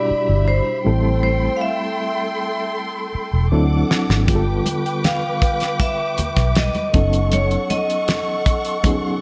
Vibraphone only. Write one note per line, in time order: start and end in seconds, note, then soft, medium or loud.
0.00 0.50 D5 medium
0.48 1.22 C5 medium
1.23 1.55 C5 medium
1.56 1.63 F5 medium
1.61 2.72 E5 medium
5.05 5.83 F5 medium
5.81 6.59 E5 medium
6.57 7.35 D#5 medium
7.33 7.72 C#5 medium
7.70 8.81 D#5 medium